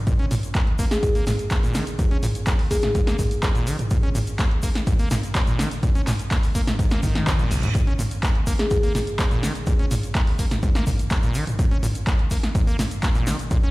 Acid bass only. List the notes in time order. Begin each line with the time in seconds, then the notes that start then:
0.07 A#2
0.19 C#4
0.31 A#2
0.55 A#3
0.79 A#3
1.03 G#2
1.15 A#3
1.27 A#2
1.51 A#3
1.63 A#2
1.75 D#3
1.99 A#2
2.11 C#4
2.23 A#2
2.47 A#3
2.71 A#3
2.95 G#2
3.07 A#3
3.19 A#2
3.43 A#3
3.55 A#2
3.67 D#3
3.91 A#2
4.03 C#4
4.15 A#2
4.39 A#3
4.63 A#3
4.87 G#2
4.99 A#3
5.11 A#2
5.35 A#3
5.47 A#2
5.59 D#3
5.83 A#2
5.95 C#4
6.07 A#2
6.31 A#3
6.55 A#3
6.79 G#2
6.91 A#3
7.03 D#3
7.27 C3
7.39 A#2
7.51 A#1
7.63 A#2
7.75 A#2
7.87 C#4
7.99 A#2
8.23 A#3
8.47 A#3
8.71 G#2
8.83 A#3
8.95 A#2
9.19 A#3
9.31 A#2
9.43 D#3
9.67 A#2
9.79 C#4
9.91 A#2
10.15 A#3
10.39 A#3
10.63 G#2
10.75 A#3
10.87 A#2
11.11 A#3
11.23 A#2
11.35 D#3
11.59 A#2
11.71 C#4
11.83 A#2
12.07 A#3
12.31 A#3
12.55 G#2
12.67 A#3
12.79 A#2
13.03 A#3
13.15 A#2
13.27 D#3
13.51 A#2
13.63 C#4